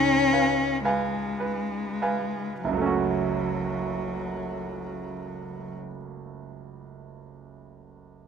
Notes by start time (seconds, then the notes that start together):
Already playing: C#2 G#2 C#4
0.33 B4 F5 G#5
0.85 G#3 B4 F5 G#5
1.40 B4
2.02 B4 F5 G#5
2.64 F#1 F#3
2.68 C#2
2.73 F#3
2.77 A3
2.82 C#4
2.86 F#4